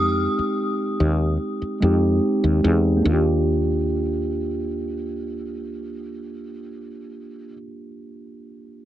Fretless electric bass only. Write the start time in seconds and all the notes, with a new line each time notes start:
Already playing: F2
0.39 muted fretless electric bass stroke
1.00 D#2
1.62 muted fretless electric bass stroke
1.82 F2
2.44 D#2
2.64 E2
3.05 D#2